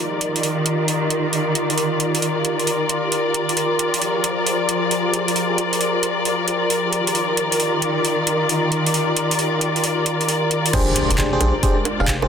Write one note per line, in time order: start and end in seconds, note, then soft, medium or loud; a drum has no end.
0.00 3.53 D#3 medium
0.00 3.57 D#3 medium
0.00 3.53 F4 medium
0.00 12.28 F4 medium
0.00 10.69 G4 medium
0.00 3.53 A#4 medium
0.00 12.28 A#4 medium
0.00 3.53 D5 medium
0.00 12.28 D5 medium
0.21 closed hi-hat medium
0.36 closed hi-hat medium
0.43 closed hi-hat medium
0.66 closed hi-hat loud
0.88 closed hi-hat medium
1.10 closed hi-hat medium
1.33 closed hi-hat medium
1.55 closed hi-hat medium
1.70 closed hi-hat medium
1.78 closed hi-hat medium
2.00 closed hi-hat medium
2.15 closed hi-hat medium
2.22 closed hi-hat medium
2.45 closed hi-hat medium
2.60 closed hi-hat soft
2.67 closed hi-hat medium
2.89 closed hi-hat medium
3.12 closed hi-hat medium
3.34 closed hi-hat medium
3.49 closed hi-hat medium
3.57 6.89 F3 medium
3.57 6.89 G#4 medium
3.57 6.89 C5 medium
3.57 10.69 D5 medium
3.57 closed hi-hat medium
3.79 closed hi-hat medium
3.94 closed hi-hat medium
4.02 closed hi-hat medium
4.24 closed hi-hat loud
4.47 closed hi-hat medium
4.69 closed hi-hat medium
4.91 closed hi-hat medium
5.14 closed hi-hat medium
5.28 closed hi-hat medium
5.36 closed hi-hat medium
5.58 closed hi-hat loud
5.73 closed hi-hat medium
5.81 closed hi-hat medium
6.03 closed hi-hat loud
6.25 closed hi-hat medium
6.48 closed hi-hat medium
6.70 closed hi-hat medium
6.92 10.69 D#3 medium
6.92 10.74 D#3 medium
6.92 10.69 F4 medium
6.92 10.70 A#4 medium
6.92 closed hi-hat loud
7.07 closed hi-hat medium
7.15 closed hi-hat medium
7.37 closed hi-hat loud
7.52 closed hi-hat medium
7.60 closed hi-hat medium
7.82 closed hi-hat loud
8.05 closed hi-hat medium
8.27 closed hi-hat loud
8.49 closed hi-hat medium
8.72 closed hi-hat loud
8.87 closed hi-hat medium
8.94 closed hi-hat medium
9.17 closed hi-hat loud
9.31 closed hi-hat medium
9.39 closed hi-hat medium
9.61 closed hi-hat loud
9.76 closed hi-hat soft
9.84 closed hi-hat medium
10.06 closed hi-hat loud
10.21 closed hi-hat soft
10.29 closed hi-hat medium
10.51 closed hi-hat loud
10.66 closed hi-hat medium
10.73 12.28 G#3 medium
10.73 12.28 D4 medium
10.73 11.15 D4 loud
10.73 11.15 G4 medium
10.73 11.15 G#4 medium
10.73 12.28 C5 loud
10.73 11.15 C5 loud
10.73 12.28 G5 medium
10.73 kick loud
10.73 cross-stick medium
10.73 closed hi-hat medium
10.73 crash loud
10.73 impact medium
10.96 closed hi-hat loud
11.11 11.38 F1 loud
11.11 closed hi-hat medium
11.18 11.31 D4 medium
11.18 11.31 G4 medium
11.18 11.31 G#4 medium
11.18 11.31 C5 loud
11.18 kick loud
11.18 clap loud
11.18 closed hi-hat medium
11.33 11.39 D4 loud
11.33 11.39 G4 medium
11.33 11.39 G#4 medium
11.33 11.39 C5 loud
11.41 11.52 A#1 medium
11.41 11.55 D4 loud
11.41 11.55 G4 medium
11.41 11.55 G#4 medium
11.41 11.55 C5 loud
11.41 closed hi-hat loud
11.41 high bongo medium
11.63 11.77 D4 medium
11.63 11.77 G4 medium
11.63 11.77 G#4 medium
11.63 11.77 C5 loud
11.63 kick loud
11.63 closed hi-hat medium
11.85 closed hi-hat loud
11.85 high bongo medium
12.00 12.28 F1 medium
12.00 12.15 D4 medium
12.00 12.15 G4 medium
12.00 12.15 G#4 medium
12.00 12.15 F5 medium
12.00 cross-stick medium
12.08 kick loud
12.08 clap loud
12.08 closed hi-hat medium
12.22 12.28 D4 medium
12.22 12.28 G4 medium
12.22 12.28 G#4 medium
12.22 12.28 C5 medium
12.22 high bongo medium